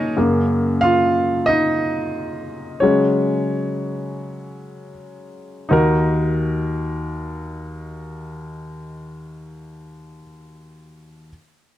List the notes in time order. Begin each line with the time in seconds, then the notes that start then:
Already playing: G#3 A#3 C#4 D#4 G#4 A#4 C#5 D#5
0.17 F#2 C#3 A#3
0.81 F4 F5
1.46 D#4 D#5
2.80 C#3 F#3 G#3 C#4 C#5
5.69 D#2 D#4 F#4 A#4